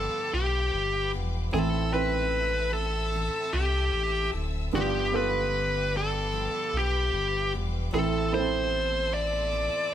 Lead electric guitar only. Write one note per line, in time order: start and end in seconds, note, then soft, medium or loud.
0.00 0.30 A4 medium
0.34 1.10 G4 medium
1.54 1.91 A4 medium
1.94 2.69 B4 medium
2.73 3.56 A4 medium
3.53 4.29 G4 medium
4.75 5.15 G4 medium
5.16 5.97 B4 medium
5.97 6.77 A4 medium
6.77 7.51 G4 medium
7.94 8.31 A4 medium
8.34 9.13 C5 medium
9.14 9.94 D5 medium